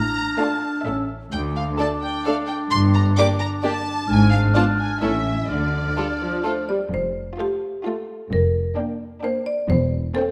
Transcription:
Already playing: double bass section A1, cello section A2, clarinet D4, violin section A#5, flute F6
0.39 viola section A3 D4, violin section F4 F5 A5
0.84 double bass section A1, cello section A2, viola section A3 C#4, clarinet C#4, violin section A4 E5, flute E6
1.31 double bass section D2, cello section D2, clarinet D4, violin section G5, flute D6
1.56 violin section F5
1.78 viola section A3 D4, violin section A4 D5 A5
2.03 violin section G5
2.25 viola section A3 D4, violin section A4 D5 F5
2.48 violin section G5
2.71 double bass section G1, cello section G2, violin section C6
2.94 violin section A#5
3.18 viola section A#3 D4, violin section G4 D5 D6
3.40 violin section A#5
3.63 viola section A#3 D4, violin section G4 D5 A5
4.08 double bass section G#1, cello section G#2, clarinet D4, violin section G#5, flute F6
4.31 violin section F5
4.55 viola section B3 D4, violin section F4 D5 A5
4.78 violin section G#5
5.01 double bass section A1, cello section A2, viola section A3 C#4, clarinet C#4, violin section E4 A4 E5, flute E6
5.48 double bass section D2, cello section D3, clarinet D4, violin section D5, flute F6
5.96 viola section G3, violin section F4 A4
6.22 viola section F3
6.44 viola section A3, violin section F4 A4, marimba C5
6.69 viola section G3, marimba D5
6.93 double bass section F1, cello section F2, marimba C5
7.38 viola section A3, violin section F4 A5, marimba G4
7.85 viola section A3, violin section F4 A5, marimba A4
8.32 double bass section F1, cello section F2, marimba A#4
8.77 viola section A#3, violin section D4 G5
9.23 viola section A#3, violin section D4 G5, marimba C5
9.46 marimba D5
9.69 double bass section E1, cello section E2, marimba C5
10.15 viola section A#3, violin section C4 G5, marimba A4

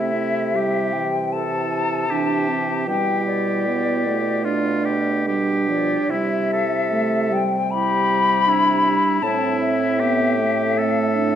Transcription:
Already playing: bassoon C3, french horn A3, clarinet C4, oboe E4, flute E5
0.13 clarinet E4
0.54 french horn G3, oboe G4
0.93 french horn E3, flute G5
1.32 clarinet E4, oboe A4, flute A5
2.10 french horn E3, clarinet D4, oboe G4
2.49 clarinet C4
2.87 bassoon B2, french horn G3, clarinet E4, oboe G4, flute G5
3.26 flute D5
3.66 french horn B3
4.06 french horn A3
4.44 clarinet D4, oboe F4
4.85 oboe G4
5.25 french horn G3, clarinet D4, oboe G4
5.69 french horn F3, flute D5
6.09 bassoon C3, french horn G3, clarinet E4, oboe E4, flute E5
6.53 oboe A4
6.91 french horn A3
7.30 french horn G3, flute G5
7.70 clarinet E4, oboe G4, flute B5
8.47 clarinet D4, oboe E4
9.21 bassoon A2, clarinet C4, french horn C4, oboe E4, flute A5
9.60 flute E5
9.99 french horn B3, oboe G4
10.38 french horn A3
10.76 clarinet C4, oboe A4
11.15 clarinet D4

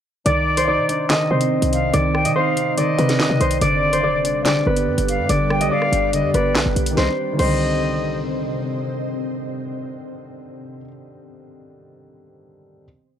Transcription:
0.25 808-style bass C2, ambient pad C3 D#3 C4, grand piano D#3, flute D5, harp D5, closed hi-hat
0.57 harp C5, closed hi-hat
0.68 grand piano D#4, harp D5
0.78 808-style bass C3
0.89 grand piano D4, closed hi-hat
1.10 grand piano D#3, harp D#5, snare, clap, closed hi-hat
1.31 808-style bass C3, grand piano C4, harp C5
1.41 closed hi-hat
1.62 808-style bass C2, closed hi-hat
1.73 flute F5, closed hi-hat
1.83 808-style bass B1
1.93 808-style bass C2, grand piano D#3, harp D5, closed hi-hat
2.14 flute G5, cross-stick
2.25 808-style bass C3, harp D#5, closed hi-hat
2.35 grand piano D#4, harp C5, flute F5
2.57 closed hi-hat
2.77 grand piano D#3, harp D5, flute D#5, closed hi-hat
2.98 808-style bass C3, grand piano C4, harp B4, closed hi-hat
3.09 snare, closed hi-hat
3.19 808-style bass D#3, snare, clap
3.30 808-style bass C3
3.40 808-style bass C2, harp C5, closed hi-hat
3.51 closed hi-hat
3.61 808-style bass G1, grand piano D3, ambient pad G3 G4 B4 D5, flute D5, harp D5, closed hi-hat
3.93 harp C5, closed hi-hat
4.04 grand piano D5, harp D5
4.24 grand piano D4, closed hi-hat
4.45 grand piano D3, harp D5, snare, clap, closed hi-hat
4.66 808-style bass G1, grand piano B3, harp B4
4.76 closed hi-hat
4.87 808-style bass G2
4.98 808-style bass G1, closed hi-hat
5.08 flute F5, closed hi-hat
5.19 808-style bass G2
5.29 808-style bass G1, grand piano D3, harp D5, closed hi-hat
5.50 flute G5, cross-stick
5.61 808-style bass B1, harp D#5, closed hi-hat
5.71 harp D5, grand piano D5, flute F5
5.82 cross-stick
5.92 808-style bass G1, grand piano D4, closed hi-hat
6.13 grand piano D3, flute D#5, closed hi-hat
6.24 808-style bass G2
6.34 808-style bass G1, grand piano B3, harp B4, flute D5, closed hi-hat
6.55 808-style bass B1, snare, clap
6.66 808-style bass G1
6.76 808-style bass B1, closed hi-hat
6.86 closed hi-hat
6.91 grand piano D#3 G3
6.97 808-style bass C2, ambient pad C3 C4 C5 D#5, grand piano C4, harp C5, flute D#5, snare
7.03 grand piano D4
7.33 grand piano D#3
7.37 808-style bass C2, grand piano G3, harp C5, flute D#5, crash
7.41 grand piano D3 C4

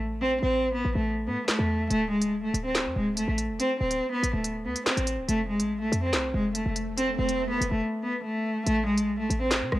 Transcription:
Already playing: 808-style bass A1
0.22 cello C4
0.43 808-style bass A1, cello C4
0.75 cello B3
0.85 808-style bass A1
0.95 808-style bass A1, cello A3
1.27 808-style bass A2, cello B3
1.48 cello A3, snare, clap
1.59 808-style bass E2
1.91 808-style bass D1, cello A3, closed hi-hat
2.12 cello G#3
2.22 closed hi-hat
2.33 808-style bass E1
2.43 808-style bass D1, cello A3
2.54 808-style bass D1, closed hi-hat
2.65 cello C4
2.75 snare, clap, closed hi-hat
2.86 808-style bass F2
2.96 808-style bass D1, cello G#3
3.17 808-style bass F1, cello A3, closed hi-hat
3.28 808-style bass A1
3.38 closed hi-hat
3.49 808-style bass F1
3.60 cello C4, closed hi-hat
3.81 808-style bass D1, cello C4
3.91 closed hi-hat
4.12 cello B3
4.23 808-style bass A1, closed hi-hat
4.33 808-style bass D1, cello A3
4.44 closed hi-hat
4.65 808-style bass D2, cello B3
4.76 closed hi-hat
4.86 cello C4, snare, clap
4.97 808-style bass A1, closed hi-hat
5.07 closed hi-hat
5.18 808-style bass C1
5.29 808-style bass F1, cello A3, closed hi-hat, swell
5.50 cello G#3
5.60 808-style bass A1, closed hi-hat
5.81 cello A3
5.92 808-style bass F2, closed hi-hat
6.02 cello C4
6.13 808-style bass C2, snare, clap, closed hi-hat
6.34 808-style bass F1, cello G#3
6.55 cello A3, closed hi-hat
6.66 808-style bass F1
6.76 closed hi-hat
6.98 cello C4, closed hi-hat
7.19 808-style bass F1, cello C4
7.29 closed hi-hat
7.50 cello B3
7.61 808-style bass F1, closed hi-hat
7.71 808-style bass F1, cello A3
8.03 cello B3
8.24 cello A3
8.67 808-style bass A1, cello A3, closed hi-hat
8.88 cello G#3
8.98 closed hi-hat
9.09 808-style bass B1
9.19 808-style bass A1, cello A3
9.30 808-style bass A1, closed hi-hat
9.41 cello C4
9.51 snare, clap, closed hi-hat
9.62 808-style bass C3
9.72 808-style bass A1, cello G#3, cross-stick

